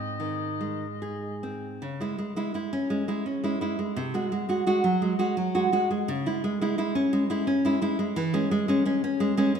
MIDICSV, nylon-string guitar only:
0, 0, Header, 1, 2, 480
1, 0, Start_track
1, 0, Key_signature, 4, "minor"
1, 0, Tempo, 811908
1, 1075, Time_signature, 6, 3, 24, 8
1, 1075, Tempo, 729927
1, 1555, Tempo, 707547
1, 3955, Tempo, 693642
1, 6386, End_track
2, 0, Start_track
2, 0, Title_t, "Nylon-string guitar"
2, 0, Program_c, 0, 24
2, 0, Note_on_c, 0, 44, 56
2, 0, Note_on_c, 0, 60, 45
2, 117, Note_on_c, 0, 51, 40
2, 259, Note_off_c, 0, 60, 0
2, 358, Note_on_c, 0, 56, 47
2, 500, Note_off_c, 0, 51, 0
2, 602, Note_on_c, 0, 68, 39
2, 747, Note_off_c, 0, 56, 0
2, 846, Note_on_c, 0, 60, 42
2, 988, Note_off_c, 0, 68, 0
2, 1051, Note_off_c, 0, 44, 0
2, 1075, Note_on_c, 0, 49, 62
2, 1076, Note_off_c, 0, 60, 0
2, 1192, Note_off_c, 0, 49, 0
2, 1198, Note_on_c, 0, 56, 52
2, 1203, Note_on_c, 0, 64, 60
2, 1305, Note_off_c, 0, 56, 0
2, 1306, Note_off_c, 0, 64, 0
2, 1316, Note_on_c, 0, 56, 54
2, 1426, Note_off_c, 0, 56, 0
2, 1434, Note_on_c, 0, 56, 57
2, 1438, Note_on_c, 0, 64, 54
2, 1542, Note_off_c, 0, 56, 0
2, 1544, Note_off_c, 0, 64, 0
2, 1551, Note_on_c, 0, 56, 48
2, 1556, Note_on_c, 0, 64, 53
2, 1664, Note_off_c, 0, 56, 0
2, 1665, Note_off_c, 0, 64, 0
2, 1677, Note_on_c, 0, 61, 65
2, 1794, Note_on_c, 0, 56, 60
2, 1872, Note_off_c, 0, 61, 0
2, 1908, Note_off_c, 0, 56, 0
2, 1916, Note_on_c, 0, 56, 53
2, 1920, Note_on_c, 0, 64, 55
2, 2027, Note_off_c, 0, 56, 0
2, 2028, Note_off_c, 0, 64, 0
2, 2037, Note_on_c, 0, 61, 58
2, 2157, Note_on_c, 0, 56, 51
2, 2162, Note_on_c, 0, 64, 62
2, 2230, Note_off_c, 0, 61, 0
2, 2266, Note_off_c, 0, 56, 0
2, 2267, Note_off_c, 0, 64, 0
2, 2276, Note_on_c, 0, 56, 57
2, 2282, Note_on_c, 0, 64, 53
2, 2385, Note_off_c, 0, 56, 0
2, 2388, Note_off_c, 0, 64, 0
2, 2396, Note_on_c, 0, 56, 53
2, 2516, Note_off_c, 0, 56, 0
2, 2516, Note_on_c, 0, 48, 77
2, 2632, Note_off_c, 0, 48, 0
2, 2635, Note_on_c, 0, 56, 49
2, 2640, Note_on_c, 0, 66, 64
2, 2744, Note_off_c, 0, 56, 0
2, 2744, Note_off_c, 0, 66, 0
2, 2756, Note_on_c, 0, 56, 60
2, 2863, Note_off_c, 0, 56, 0
2, 2870, Note_on_c, 0, 56, 59
2, 2875, Note_on_c, 0, 66, 63
2, 2981, Note_off_c, 0, 56, 0
2, 2983, Note_off_c, 0, 66, 0
2, 2991, Note_on_c, 0, 56, 57
2, 2995, Note_on_c, 0, 66, 65
2, 3101, Note_off_c, 0, 56, 0
2, 3103, Note_off_c, 0, 66, 0
2, 3109, Note_on_c, 0, 54, 67
2, 3231, Note_on_c, 0, 56, 67
2, 3301, Note_off_c, 0, 54, 0
2, 3339, Note_off_c, 0, 56, 0
2, 3347, Note_on_c, 0, 56, 63
2, 3350, Note_on_c, 0, 66, 65
2, 3456, Note_off_c, 0, 56, 0
2, 3457, Note_off_c, 0, 66, 0
2, 3469, Note_on_c, 0, 54, 62
2, 3589, Note_on_c, 0, 56, 61
2, 3591, Note_on_c, 0, 66, 62
2, 3661, Note_off_c, 0, 54, 0
2, 3698, Note_off_c, 0, 56, 0
2, 3699, Note_off_c, 0, 66, 0
2, 3710, Note_on_c, 0, 56, 58
2, 3714, Note_on_c, 0, 66, 71
2, 3820, Note_off_c, 0, 56, 0
2, 3822, Note_off_c, 0, 66, 0
2, 3833, Note_on_c, 0, 56, 58
2, 3953, Note_on_c, 0, 49, 82
2, 3954, Note_off_c, 0, 56, 0
2, 4073, Note_off_c, 0, 49, 0
2, 4077, Note_on_c, 0, 56, 58
2, 4080, Note_on_c, 0, 64, 61
2, 4187, Note_off_c, 0, 56, 0
2, 4187, Note_off_c, 0, 64, 0
2, 4199, Note_on_c, 0, 56, 64
2, 4313, Note_off_c, 0, 56, 0
2, 4321, Note_on_c, 0, 56, 65
2, 4325, Note_on_c, 0, 64, 70
2, 4426, Note_off_c, 0, 56, 0
2, 4429, Note_off_c, 0, 64, 0
2, 4436, Note_on_c, 0, 56, 67
2, 4439, Note_on_c, 0, 64, 67
2, 4542, Note_off_c, 0, 56, 0
2, 4544, Note_off_c, 0, 64, 0
2, 4554, Note_on_c, 0, 61, 72
2, 4676, Note_on_c, 0, 56, 78
2, 4744, Note_off_c, 0, 61, 0
2, 4787, Note_off_c, 0, 56, 0
2, 4794, Note_on_c, 0, 56, 68
2, 4799, Note_on_c, 0, 64, 71
2, 4900, Note_off_c, 0, 56, 0
2, 4902, Note_off_c, 0, 64, 0
2, 4914, Note_on_c, 0, 61, 74
2, 5036, Note_on_c, 0, 56, 65
2, 5042, Note_on_c, 0, 64, 69
2, 5103, Note_off_c, 0, 61, 0
2, 5142, Note_off_c, 0, 56, 0
2, 5143, Note_off_c, 0, 64, 0
2, 5152, Note_on_c, 0, 56, 60
2, 5156, Note_on_c, 0, 64, 80
2, 5260, Note_off_c, 0, 56, 0
2, 5262, Note_off_c, 0, 64, 0
2, 5272, Note_on_c, 0, 56, 71
2, 5392, Note_on_c, 0, 52, 99
2, 5394, Note_off_c, 0, 56, 0
2, 5512, Note_off_c, 0, 52, 0
2, 5512, Note_on_c, 0, 56, 66
2, 5514, Note_on_c, 0, 61, 79
2, 5624, Note_off_c, 0, 56, 0
2, 5624, Note_off_c, 0, 61, 0
2, 5635, Note_on_c, 0, 56, 81
2, 5743, Note_off_c, 0, 56, 0
2, 5752, Note_on_c, 0, 56, 70
2, 5758, Note_on_c, 0, 61, 75
2, 5862, Note_off_c, 0, 56, 0
2, 5865, Note_off_c, 0, 61, 0
2, 5871, Note_on_c, 0, 56, 68
2, 5875, Note_on_c, 0, 61, 74
2, 5980, Note_off_c, 0, 56, 0
2, 5982, Note_off_c, 0, 61, 0
2, 5998, Note_on_c, 0, 61, 83
2, 6111, Note_on_c, 0, 56, 79
2, 6187, Note_off_c, 0, 61, 0
2, 6222, Note_off_c, 0, 56, 0
2, 6230, Note_on_c, 0, 56, 75
2, 6235, Note_on_c, 0, 61, 85
2, 6340, Note_off_c, 0, 56, 0
2, 6343, Note_off_c, 0, 61, 0
2, 6352, Note_on_c, 0, 61, 68
2, 6386, Note_off_c, 0, 61, 0
2, 6386, End_track
0, 0, End_of_file